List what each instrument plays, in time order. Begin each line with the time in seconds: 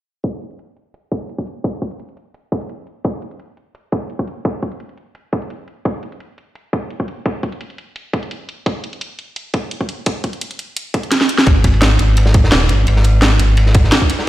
0.24 kick, closed hi-hat
0.41 closed hi-hat
0.51 closed hi-hat
0.59 closed hi-hat
0.77 closed hi-hat
0.94 closed hi-hat
1.12 kick, closed hi-hat
1.29 closed hi-hat
1.38 kick
1.47 closed hi-hat
1.64 kick, closed hi-hat
1.82 kick, closed hi-hat
1.91 closed hi-hat
2.00 closed hi-hat
2.09 closed hi-hat
2.17 closed hi-hat
2.34 closed hi-hat
2.52 kick, closed hi-hat
2.61 closed hi-hat
2.69 closed hi-hat
2.87 closed hi-hat
3.04 kick, closed hi-hat
3.22 closed hi-hat
3.31 closed hi-hat
3.40 closed hi-hat
3.57 closed hi-hat
3.75 closed hi-hat
3.92 kick, closed hi-hat
4.10 closed hi-hat
4.19 kick
4.27 closed hi-hat
4.45 kick, closed hi-hat
4.62 kick, closed hi-hat
4.72 closed hi-hat
4.80 closed hi-hat
4.89 closed hi-hat
4.98 closed hi-hat
5.15 closed hi-hat
5.33 kick, closed hi-hat
5.42 closed hi-hat
5.50 closed hi-hat
5.68 closed hi-hat
5.85 kick, closed hi-hat
6.03 closed hi-hat
6.12 closed hi-hat
6.20 closed hi-hat
6.38 closed hi-hat
6.55 closed hi-hat
6.73 kick, closed hi-hat
6.90 closed hi-hat
7.00 kick
7.08 closed hi-hat
7.26 kick, closed hi-hat
7.43 kick, closed hi-hat
7.52 closed hi-hat
7.61 closed hi-hat
7.70 closed hi-hat
7.78 closed hi-hat
7.96 closed hi-hat
8.13 kick, closed hi-hat
8.23 closed hi-hat
8.31 closed hi-hat
8.49 closed hi-hat
8.66 kick, closed hi-hat
8.84 closed hi-hat
8.93 closed hi-hat
9.01 closed hi-hat
9.19 closed hi-hat
9.36 closed hi-hat
9.54 kick, closed hi-hat
9.71 closed hi-hat
9.81 kick
9.89 closed hi-hat
10.06 kick, closed hi-hat
10.24 kick, closed hi-hat
10.33 closed hi-hat
10.41 closed hi-hat
10.51 closed hi-hat
10.59 closed hi-hat
10.77 closed hi-hat
10.94 kick, closed hi-hat
11.03 closed hi-hat
11.12 snare, closed hi-hat
11.21 snare
11.29 closed hi-hat
11.38 snare
11.46 sub bass G#1, kick, closed hi-hat, ride
11.64 kick, closed hi-hat, ride
11.74 ride
11.81 snare, closed hi-hat, ride
11.91 ride
11.99 sub bass G#1, closed hi-hat, ride
12.09 ride
12.17 closed hi-hat, ride
12.26 snare
12.34 kick, closed hi-hat, ride
12.44 snare
12.52 sub bass D#1, snare, closed hi-hat, ride
12.61 snare
12.69 sub bass G#1, closed hi-hat, ride
12.87 sub bass G#1, closed hi-hat, ride
12.96 snare
13.04 closed hi-hat, ride
13.22 snare, closed hi-hat, ride
13.39 sub bass G#1, closed hi-hat, ride
13.49 ride
13.57 closed hi-hat, ride
13.66 snare
13.74 kick, closed hi-hat, ride
13.84 snare
13.92 snare, closed hi-hat, ride
14.02 kick
14.10 closed hi-hat, ride
14.19 snare